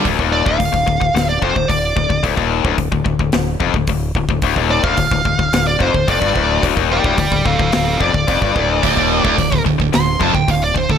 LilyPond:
<<
  \new Staff \with { instrumentName = "Lead electric guitar" } { \time 4/4 \key d \phrygian \tempo 4 = 109 r8 d''16 f''4. d''16 c''8 d''4 | r1 | r8 d''16 f''4. d''16 c''8 d''4 | r8 <d'' g''>8 <d'' g''>8 <a' f''>8 <a' f''>8 d''4.~ |
d''4. r8 c'''8 a''16 g''16 f''16 d''16 c''16 a'16 | }
  \new Staff \with { instrumentName = "Distorted electric guitar" } { \clef bass \time 4/4 \key d \phrygian d,16 ees,8 d,16 d,16 d,16 d,16 d,16 d,8 f,16 d,16 d,8 d,16 d,16 | d,16 ees,8 d,16 d,16 d,16 d,16 d,16 d,8 f,16 d,16 d,8 d,16 d,16 | d,16 ees,8 d,16 d,16 d,16 d,16 d,16 d,8 f,16 d,16 f,16 g,16 d,8 | d,16 ees,8 d,16 d,16 d,16 d,16 d,16 d,8 f,16 d,16 f,16 g,16 d,8 |
d,16 ees,8 d,16 d,16 d,16 d,16 d,16 d,8 f,16 d,16 d,8 d,16 d,16 | }
  \new Staff \with { instrumentName = "Distorted electric guitar" } { \clef bass \time 4/4 \key d \phrygian r1 | r1 | r1 | r1 |
d,16 ees,8 d,16 d,16 d,16 d,16 d,16 d,8 f,16 d,16 d,8 d,16 d,16 | }
  \new Staff \with { instrumentName = "Fingered electric bass" } { \clef bass \time 4/4 \key d \phrygian d,,16 ees,,8 d,,16 d,,16 d,,16 d,,16 d,,16 d,,8 f,,16 d,,16 d,,8 d,,16 d,,16 | d,,16 ees,,8 d,,16 d,,16 d,,16 d,,16 d,,16 d,,8 f,,16 d,,16 d,,8 d,,16 d,,16 | d,,16 ees,,8 d,,16 d,,16 d,,16 d,,16 d,,16 d,,8 f,,16 d,,16 f,,16 g,,16 d,,8 | d,,16 ees,,8 d,,16 d,,16 d,,16 d,,16 d,,16 d,,8 f,,16 d,,16 f,,16 g,,16 d,,8 |
d,,16 ees,,8 d,,16 d,,16 d,,16 d,,16 d,,16 d,,8 f,,16 d,,16 d,,8 d,,16 d,,16 | }
  \new DrumStaff \with { instrumentName = "Drums" } \drummode { \time 4/4 <hho bd>16 bd8 bd16 <hho bd>16 bd16 bd16 bd16 <hho sn>8 bd16 bd16 <hho bd>8 bd16 bd16 | <hho bd>16 bd8 bd16 <hho bd>16 bd16 bd16 bd16 <hho sn>8 bd16 bd16 <hho bd>8 bd16 bd16 | <hho bd>16 bd8 bd16 <hho bd>16 bd16 bd16 bd16 <hho sn>8 bd16 bd16 <hho bd>16 bd16 bd8 | <hho bd>16 bd8 bd16 <hho bd>16 bd16 bd16 bd16 <hho sn>8 bd16 bd16 <hho bd>16 bd16 bd8 |
<hho bd>16 bd8 bd16 <hho bd>16 bd16 bd16 bd16 <hho sn>8 bd16 bd16 <hho bd>8 bd16 bd16 | }
>>